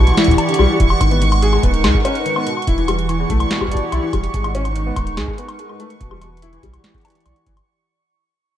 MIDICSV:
0, 0, Header, 1, 6, 480
1, 0, Start_track
1, 0, Tempo, 416667
1, 1159, Time_signature, 4, 2, 24, 8
1, 9874, End_track
2, 0, Start_track
2, 0, Title_t, "Synth texture"
2, 0, Program_c, 0, 99
2, 0, Note_on_c, 0, 85, 88
2, 8849, Note_off_c, 0, 85, 0
2, 9874, End_track
3, 0, Start_track
3, 0, Title_t, "Analog synth pad"
3, 0, Program_c, 1, 89
3, 0, Note_on_c, 1, 52, 92
3, 0, Note_on_c, 1, 64, 93
3, 0, Note_on_c, 1, 67, 79
3, 0, Note_on_c, 1, 74, 76
3, 0, Note_on_c, 1, 78, 84
3, 1159, Note_off_c, 1, 64, 0
3, 1159, Note_off_c, 1, 67, 0
3, 1159, Note_off_c, 1, 74, 0
3, 1160, Note_off_c, 1, 52, 0
3, 1160, Note_on_c, 1, 56, 88
3, 1441, Note_on_c, 1, 63, 83
3, 1709, Note_on_c, 1, 70, 73
3, 1916, Note_on_c, 1, 71, 68
3, 2840, Note_off_c, 1, 56, 0
3, 2840, Note_off_c, 1, 63, 0
3, 2840, Note_off_c, 1, 70, 0
3, 2842, Note_on_c, 1, 52, 95
3, 3141, Note_on_c, 1, 64, 90
3, 3568, Note_on_c, 1, 74, 85
3, 3577, Note_on_c, 1, 67, 66
3, 3704, Note_off_c, 1, 71, 0
3, 4999, Note_off_c, 1, 67, 0
3, 4999, Note_on_c, 1, 56, 76
3, 5000, Note_off_c, 1, 64, 0
3, 5000, Note_off_c, 1, 74, 0
3, 5001, Note_off_c, 1, 52, 0
3, 5100, Note_on_c, 1, 63, 87
3, 5756, Note_on_c, 1, 70, 64
3, 5756, Note_on_c, 1, 71, 69
3, 6679, Note_off_c, 1, 56, 0
3, 6680, Note_off_c, 1, 63, 0
3, 6680, Note_off_c, 1, 70, 0
3, 6680, Note_on_c, 1, 52, 77
3, 6997, Note_on_c, 1, 64, 75
3, 7440, Note_on_c, 1, 67, 77
3, 7544, Note_off_c, 1, 71, 0
3, 7652, Note_on_c, 1, 74, 73
3, 8839, Note_off_c, 1, 78, 0
3, 8840, Note_off_c, 1, 52, 0
3, 8840, Note_off_c, 1, 64, 0
3, 8840, Note_off_c, 1, 67, 0
3, 8840, Note_off_c, 1, 74, 0
3, 9874, End_track
4, 0, Start_track
4, 0, Title_t, "Felt piano"
4, 0, Program_c, 2, 0
4, 200, Note_on_c, 2, 64, 103
4, 311, Note_off_c, 2, 64, 0
4, 320, Note_on_c, 2, 52, 95
4, 394, Note_off_c, 2, 52, 0
4, 440, Note_on_c, 2, 52, 74
4, 551, Note_off_c, 2, 52, 0
4, 560, Note_on_c, 2, 50, 75
4, 604, Note_off_c, 2, 50, 0
4, 680, Note_on_c, 2, 55, 97
4, 754, Note_off_c, 2, 55, 0
4, 801, Note_on_c, 2, 52, 80
4, 845, Note_off_c, 2, 52, 0
4, 920, Note_on_c, 2, 64, 75
4, 994, Note_off_c, 2, 64, 0
4, 1159, Note_on_c, 2, 51, 78
4, 1271, Note_off_c, 2, 51, 0
4, 1279, Note_on_c, 2, 59, 75
4, 1391, Note_off_c, 2, 59, 0
4, 1400, Note_on_c, 2, 51, 73
4, 1511, Note_off_c, 2, 51, 0
4, 1639, Note_on_c, 2, 68, 106
4, 1751, Note_off_c, 2, 68, 0
4, 1760, Note_on_c, 2, 56, 102
4, 1834, Note_off_c, 2, 56, 0
4, 1879, Note_on_c, 2, 59, 79
4, 1954, Note_off_c, 2, 59, 0
4, 2119, Note_on_c, 2, 56, 86
4, 2194, Note_off_c, 2, 56, 0
4, 2239, Note_on_c, 2, 44, 77
4, 2314, Note_off_c, 2, 44, 0
4, 2360, Note_on_c, 2, 61, 100
4, 2471, Note_off_c, 2, 61, 0
4, 2600, Note_on_c, 2, 51, 81
4, 2711, Note_off_c, 2, 51, 0
4, 2720, Note_on_c, 2, 59, 78
4, 2831, Note_off_c, 2, 59, 0
4, 2840, Note_on_c, 2, 47, 77
4, 2951, Note_off_c, 2, 47, 0
4, 3080, Note_on_c, 2, 64, 99
4, 3191, Note_off_c, 2, 64, 0
4, 3200, Note_on_c, 2, 52, 104
4, 3274, Note_off_c, 2, 52, 0
4, 3320, Note_on_c, 2, 55, 77
4, 3394, Note_off_c, 2, 55, 0
4, 3560, Note_on_c, 2, 52, 90
4, 3634, Note_off_c, 2, 52, 0
4, 3680, Note_on_c, 2, 40, 76
4, 3754, Note_off_c, 2, 40, 0
4, 3800, Note_on_c, 2, 57, 103
4, 3911, Note_off_c, 2, 57, 0
4, 4040, Note_on_c, 2, 47, 85
4, 4151, Note_off_c, 2, 47, 0
4, 4160, Note_on_c, 2, 55, 75
4, 4271, Note_off_c, 2, 55, 0
4, 4280, Note_on_c, 2, 47, 78
4, 4391, Note_off_c, 2, 47, 0
4, 4520, Note_on_c, 2, 64, 102
4, 4631, Note_off_c, 2, 64, 0
4, 4640, Note_on_c, 2, 52, 109
4, 4714, Note_off_c, 2, 52, 0
4, 4760, Note_on_c, 2, 55, 81
4, 4834, Note_off_c, 2, 55, 0
4, 5000, Note_on_c, 2, 56, 78
4, 5074, Note_off_c, 2, 56, 0
4, 5120, Note_on_c, 2, 44, 76
4, 5194, Note_off_c, 2, 44, 0
4, 5240, Note_on_c, 2, 61, 100
4, 5351, Note_off_c, 2, 61, 0
4, 5480, Note_on_c, 2, 51, 85
4, 5591, Note_off_c, 2, 51, 0
4, 5600, Note_on_c, 2, 59, 81
4, 5711, Note_off_c, 2, 59, 0
4, 5720, Note_on_c, 2, 51, 79
4, 5831, Note_off_c, 2, 51, 0
4, 5960, Note_on_c, 2, 68, 106
4, 6071, Note_off_c, 2, 68, 0
4, 6080, Note_on_c, 2, 56, 100
4, 6154, Note_off_c, 2, 56, 0
4, 6200, Note_on_c, 2, 59, 77
4, 6274, Note_off_c, 2, 59, 0
4, 6440, Note_on_c, 2, 56, 84
4, 6514, Note_off_c, 2, 56, 0
4, 6560, Note_on_c, 2, 44, 77
4, 6634, Note_off_c, 2, 44, 0
4, 6680, Note_on_c, 2, 57, 103
4, 6791, Note_off_c, 2, 57, 0
4, 6920, Note_on_c, 2, 47, 82
4, 7031, Note_off_c, 2, 47, 0
4, 7040, Note_on_c, 2, 55, 77
4, 7151, Note_off_c, 2, 55, 0
4, 7160, Note_on_c, 2, 47, 78
4, 7271, Note_off_c, 2, 47, 0
4, 7400, Note_on_c, 2, 64, 108
4, 7511, Note_off_c, 2, 64, 0
4, 7519, Note_on_c, 2, 52, 100
4, 7594, Note_off_c, 2, 52, 0
4, 7639, Note_on_c, 2, 55, 84
4, 7714, Note_off_c, 2, 55, 0
4, 7880, Note_on_c, 2, 52, 87
4, 7954, Note_off_c, 2, 52, 0
4, 7999, Note_on_c, 2, 40, 75
4, 8074, Note_off_c, 2, 40, 0
4, 8119, Note_on_c, 2, 52, 99
4, 8222, Note_off_c, 2, 52, 0
4, 8239, Note_on_c, 2, 52, 74
4, 8342, Note_off_c, 2, 52, 0
4, 8359, Note_on_c, 2, 52, 81
4, 8434, Note_off_c, 2, 52, 0
4, 8479, Note_on_c, 2, 52, 78
4, 8582, Note_off_c, 2, 52, 0
4, 8599, Note_on_c, 2, 52, 106
4, 8644, Note_off_c, 2, 52, 0
4, 9874, End_track
5, 0, Start_track
5, 0, Title_t, "Sub bass"
5, 0, Program_c, 3, 38
5, 0, Note_on_c, 3, 35, 88
5, 124, Note_off_c, 3, 35, 0
5, 679, Note_on_c, 3, 35, 100
5, 762, Note_off_c, 3, 35, 0
5, 920, Note_on_c, 3, 28, 86
5, 1085, Note_off_c, 3, 28, 0
5, 1160, Note_on_c, 3, 32, 100
5, 1820, Note_off_c, 3, 32, 0
5, 1880, Note_on_c, 3, 27, 85
5, 2120, Note_on_c, 3, 39, 98
5, 2137, Note_off_c, 3, 27, 0
5, 2202, Note_off_c, 3, 39, 0
5, 3080, Note_on_c, 3, 28, 104
5, 3740, Note_off_c, 3, 28, 0
5, 3799, Note_on_c, 3, 35, 85
5, 3964, Note_off_c, 3, 35, 0
5, 4519, Note_on_c, 3, 35, 99
5, 4602, Note_off_c, 3, 35, 0
5, 4759, Note_on_c, 3, 28, 85
5, 4924, Note_off_c, 3, 28, 0
5, 5000, Note_on_c, 3, 32, 97
5, 5660, Note_off_c, 3, 32, 0
5, 5720, Note_on_c, 3, 27, 85
5, 5958, Note_on_c, 3, 39, 97
5, 5975, Note_off_c, 3, 27, 0
5, 6041, Note_off_c, 3, 39, 0
5, 6919, Note_on_c, 3, 28, 97
5, 7579, Note_off_c, 3, 28, 0
5, 7639, Note_on_c, 3, 35, 85
5, 7804, Note_off_c, 3, 35, 0
5, 8358, Note_on_c, 3, 35, 80
5, 8441, Note_off_c, 3, 35, 0
5, 8599, Note_on_c, 3, 31, 91
5, 8764, Note_off_c, 3, 31, 0
5, 9874, End_track
6, 0, Start_track
6, 0, Title_t, "Drums"
6, 80, Note_on_c, 9, 42, 53
6, 80, Note_on_c, 9, 76, 21
6, 110, Note_off_c, 9, 76, 0
6, 110, Note_on_c, 9, 76, 28
6, 140, Note_off_c, 9, 76, 0
6, 140, Note_on_c, 9, 76, 36
6, 170, Note_off_c, 9, 76, 0
6, 170, Note_on_c, 9, 76, 39
6, 195, Note_off_c, 9, 42, 0
6, 200, Note_on_c, 9, 38, 127
6, 200, Note_on_c, 9, 42, 77
6, 281, Note_off_c, 9, 42, 0
6, 281, Note_on_c, 9, 42, 60
6, 285, Note_off_c, 9, 76, 0
6, 315, Note_off_c, 9, 38, 0
6, 320, Note_on_c, 9, 36, 118
6, 350, Note_off_c, 9, 36, 0
6, 350, Note_on_c, 9, 36, 93
6, 360, Note_off_c, 9, 42, 0
6, 360, Note_on_c, 9, 42, 51
6, 380, Note_off_c, 9, 36, 0
6, 380, Note_on_c, 9, 36, 79
6, 410, Note_off_c, 9, 36, 0
6, 410, Note_on_c, 9, 36, 62
6, 440, Note_off_c, 9, 42, 0
6, 440, Note_on_c, 9, 42, 81
6, 440, Note_on_c, 9, 76, 79
6, 525, Note_off_c, 9, 36, 0
6, 555, Note_off_c, 9, 42, 0
6, 555, Note_off_c, 9, 76, 0
6, 561, Note_on_c, 9, 42, 53
6, 621, Note_off_c, 9, 42, 0
6, 621, Note_on_c, 9, 42, 82
6, 681, Note_on_c, 9, 76, 50
6, 736, Note_off_c, 9, 42, 0
6, 796, Note_off_c, 9, 76, 0
6, 920, Note_on_c, 9, 36, 111
6, 921, Note_on_c, 9, 42, 76
6, 1035, Note_off_c, 9, 36, 0
6, 1036, Note_off_c, 9, 42, 0
6, 1040, Note_on_c, 9, 76, 73
6, 1156, Note_off_c, 9, 76, 0
6, 1160, Note_on_c, 9, 36, 120
6, 1161, Note_on_c, 9, 42, 78
6, 1161, Note_on_c, 9, 76, 52
6, 1275, Note_off_c, 9, 36, 0
6, 1276, Note_off_c, 9, 42, 0
6, 1276, Note_off_c, 9, 76, 0
6, 1281, Note_on_c, 9, 42, 36
6, 1396, Note_off_c, 9, 42, 0
6, 1401, Note_on_c, 9, 42, 79
6, 1516, Note_off_c, 9, 42, 0
6, 1521, Note_on_c, 9, 42, 50
6, 1521, Note_on_c, 9, 76, 73
6, 1637, Note_off_c, 9, 42, 0
6, 1637, Note_off_c, 9, 76, 0
6, 1640, Note_on_c, 9, 42, 76
6, 1756, Note_off_c, 9, 42, 0
6, 1761, Note_on_c, 9, 76, 54
6, 1876, Note_off_c, 9, 76, 0
6, 1880, Note_on_c, 9, 36, 120
6, 1881, Note_on_c, 9, 42, 79
6, 1995, Note_off_c, 9, 36, 0
6, 1996, Note_off_c, 9, 42, 0
6, 2001, Note_on_c, 9, 42, 50
6, 2116, Note_off_c, 9, 42, 0
6, 2121, Note_on_c, 9, 38, 122
6, 2121, Note_on_c, 9, 42, 79
6, 2121, Note_on_c, 9, 76, 74
6, 2236, Note_off_c, 9, 38, 0
6, 2236, Note_off_c, 9, 42, 0
6, 2236, Note_off_c, 9, 76, 0
6, 2240, Note_on_c, 9, 36, 114
6, 2355, Note_off_c, 9, 36, 0
6, 2361, Note_on_c, 9, 42, 81
6, 2361, Note_on_c, 9, 76, 49
6, 2476, Note_off_c, 9, 42, 0
6, 2476, Note_off_c, 9, 76, 0
6, 2480, Note_on_c, 9, 42, 50
6, 2595, Note_off_c, 9, 42, 0
6, 2600, Note_on_c, 9, 42, 76
6, 2715, Note_off_c, 9, 42, 0
6, 2721, Note_on_c, 9, 76, 81
6, 2836, Note_off_c, 9, 76, 0
6, 2841, Note_on_c, 9, 42, 75
6, 2956, Note_off_c, 9, 42, 0
6, 2961, Note_on_c, 9, 76, 49
6, 3020, Note_on_c, 9, 42, 51
6, 3076, Note_off_c, 9, 76, 0
6, 3080, Note_off_c, 9, 42, 0
6, 3080, Note_on_c, 9, 36, 115
6, 3080, Note_on_c, 9, 42, 73
6, 3195, Note_off_c, 9, 36, 0
6, 3195, Note_off_c, 9, 42, 0
6, 3200, Note_on_c, 9, 42, 35
6, 3315, Note_off_c, 9, 42, 0
6, 3320, Note_on_c, 9, 42, 77
6, 3320, Note_on_c, 9, 76, 80
6, 3435, Note_off_c, 9, 42, 0
6, 3435, Note_off_c, 9, 76, 0
6, 3440, Note_on_c, 9, 42, 49
6, 3555, Note_off_c, 9, 42, 0
6, 3560, Note_on_c, 9, 42, 77
6, 3560, Note_on_c, 9, 76, 50
6, 3676, Note_off_c, 9, 42, 0
6, 3676, Note_off_c, 9, 76, 0
6, 3800, Note_on_c, 9, 36, 118
6, 3800, Note_on_c, 9, 42, 79
6, 3915, Note_off_c, 9, 36, 0
6, 3916, Note_off_c, 9, 42, 0
6, 3920, Note_on_c, 9, 42, 51
6, 3920, Note_on_c, 9, 76, 79
6, 4035, Note_off_c, 9, 42, 0
6, 4035, Note_off_c, 9, 76, 0
6, 4040, Note_on_c, 9, 38, 113
6, 4040, Note_on_c, 9, 42, 75
6, 4155, Note_off_c, 9, 38, 0
6, 4155, Note_off_c, 9, 42, 0
6, 4160, Note_on_c, 9, 36, 48
6, 4160, Note_on_c, 9, 76, 54
6, 4240, Note_off_c, 9, 36, 0
6, 4240, Note_on_c, 9, 36, 68
6, 4275, Note_off_c, 9, 76, 0
6, 4280, Note_on_c, 9, 42, 76
6, 4320, Note_off_c, 9, 36, 0
6, 4320, Note_on_c, 9, 36, 92
6, 4340, Note_off_c, 9, 42, 0
6, 4340, Note_on_c, 9, 42, 53
6, 4435, Note_off_c, 9, 36, 0
6, 4455, Note_off_c, 9, 42, 0
6, 4519, Note_on_c, 9, 42, 72
6, 4519, Note_on_c, 9, 76, 73
6, 4634, Note_off_c, 9, 42, 0
6, 4634, Note_off_c, 9, 76, 0
6, 4759, Note_on_c, 9, 42, 69
6, 4759, Note_on_c, 9, 76, 52
6, 4760, Note_on_c, 9, 36, 103
6, 4874, Note_off_c, 9, 42, 0
6, 4874, Note_off_c, 9, 76, 0
6, 4875, Note_off_c, 9, 36, 0
6, 4879, Note_on_c, 9, 42, 50
6, 4994, Note_off_c, 9, 42, 0
6, 4999, Note_on_c, 9, 42, 80
6, 5000, Note_on_c, 9, 36, 112
6, 5114, Note_off_c, 9, 42, 0
6, 5115, Note_off_c, 9, 36, 0
6, 5119, Note_on_c, 9, 42, 36
6, 5119, Note_on_c, 9, 76, 82
6, 5234, Note_off_c, 9, 42, 0
6, 5234, Note_off_c, 9, 76, 0
6, 5238, Note_on_c, 9, 42, 77
6, 5354, Note_off_c, 9, 42, 0
6, 5358, Note_on_c, 9, 42, 51
6, 5358, Note_on_c, 9, 76, 52
6, 5474, Note_off_c, 9, 42, 0
6, 5474, Note_off_c, 9, 76, 0
6, 5478, Note_on_c, 9, 42, 80
6, 5594, Note_off_c, 9, 42, 0
6, 5719, Note_on_c, 9, 42, 81
6, 5719, Note_on_c, 9, 76, 83
6, 5720, Note_on_c, 9, 36, 113
6, 5834, Note_off_c, 9, 42, 0
6, 5834, Note_off_c, 9, 76, 0
6, 5835, Note_off_c, 9, 36, 0
6, 5838, Note_on_c, 9, 42, 51
6, 5953, Note_off_c, 9, 42, 0
6, 5959, Note_on_c, 9, 38, 114
6, 5959, Note_on_c, 9, 42, 81
6, 5959, Note_on_c, 9, 76, 58
6, 6074, Note_off_c, 9, 38, 0
6, 6074, Note_off_c, 9, 42, 0
6, 6074, Note_off_c, 9, 76, 0
6, 6080, Note_on_c, 9, 36, 106
6, 6195, Note_off_c, 9, 36, 0
6, 6199, Note_on_c, 9, 42, 81
6, 6314, Note_off_c, 9, 42, 0
6, 6319, Note_on_c, 9, 42, 51
6, 6319, Note_on_c, 9, 76, 79
6, 6434, Note_off_c, 9, 42, 0
6, 6434, Note_off_c, 9, 76, 0
6, 6439, Note_on_c, 9, 42, 78
6, 6554, Note_off_c, 9, 42, 0
6, 6559, Note_on_c, 9, 76, 55
6, 6675, Note_off_c, 9, 76, 0
6, 6679, Note_on_c, 9, 42, 72
6, 6794, Note_off_c, 9, 42, 0
6, 6799, Note_on_c, 9, 42, 51
6, 6914, Note_off_c, 9, 42, 0
6, 6919, Note_on_c, 9, 36, 116
6, 6919, Note_on_c, 9, 42, 82
6, 7034, Note_off_c, 9, 42, 0
6, 7035, Note_off_c, 9, 36, 0
6, 7040, Note_on_c, 9, 76, 83
6, 7155, Note_off_c, 9, 76, 0
6, 7160, Note_on_c, 9, 42, 80
6, 7160, Note_on_c, 9, 76, 58
6, 7275, Note_off_c, 9, 42, 0
6, 7275, Note_off_c, 9, 76, 0
6, 7339, Note_on_c, 9, 42, 52
6, 7400, Note_off_c, 9, 42, 0
6, 7400, Note_on_c, 9, 42, 82
6, 7515, Note_off_c, 9, 42, 0
6, 7520, Note_on_c, 9, 42, 40
6, 7635, Note_off_c, 9, 42, 0
6, 7639, Note_on_c, 9, 36, 114
6, 7640, Note_on_c, 9, 42, 82
6, 7755, Note_off_c, 9, 36, 0
6, 7755, Note_off_c, 9, 42, 0
6, 7759, Note_on_c, 9, 42, 55
6, 7759, Note_on_c, 9, 76, 56
6, 7874, Note_off_c, 9, 42, 0
6, 7874, Note_off_c, 9, 76, 0
6, 7879, Note_on_c, 9, 38, 118
6, 7879, Note_on_c, 9, 42, 83
6, 7994, Note_off_c, 9, 38, 0
6, 7994, Note_off_c, 9, 42, 0
6, 7999, Note_on_c, 9, 36, 113
6, 8000, Note_on_c, 9, 42, 18
6, 8040, Note_off_c, 9, 42, 0
6, 8040, Note_on_c, 9, 42, 21
6, 8080, Note_off_c, 9, 42, 0
6, 8080, Note_on_c, 9, 42, 24
6, 8115, Note_off_c, 9, 36, 0
6, 8120, Note_off_c, 9, 42, 0
6, 8120, Note_on_c, 9, 42, 77
6, 8120, Note_on_c, 9, 76, 86
6, 8160, Note_off_c, 9, 42, 0
6, 8160, Note_on_c, 9, 42, 30
6, 8180, Note_off_c, 9, 42, 0
6, 8180, Note_on_c, 9, 42, 66
6, 8201, Note_off_c, 9, 42, 0
6, 8201, Note_on_c, 9, 42, 34
6, 8235, Note_off_c, 9, 76, 0
6, 8240, Note_off_c, 9, 42, 0
6, 8240, Note_on_c, 9, 42, 54
6, 8300, Note_off_c, 9, 42, 0
6, 8300, Note_on_c, 9, 42, 43
6, 8359, Note_off_c, 9, 42, 0
6, 8359, Note_on_c, 9, 42, 76
6, 8359, Note_on_c, 9, 76, 55
6, 8475, Note_off_c, 9, 42, 0
6, 8475, Note_off_c, 9, 76, 0
6, 8480, Note_on_c, 9, 42, 39
6, 8595, Note_off_c, 9, 42, 0
6, 8599, Note_on_c, 9, 36, 103
6, 8599, Note_on_c, 9, 42, 76
6, 8715, Note_off_c, 9, 36, 0
6, 8715, Note_off_c, 9, 42, 0
6, 8719, Note_on_c, 9, 42, 51
6, 8719, Note_on_c, 9, 76, 82
6, 8835, Note_off_c, 9, 42, 0
6, 8835, Note_off_c, 9, 76, 0
6, 9874, End_track
0, 0, End_of_file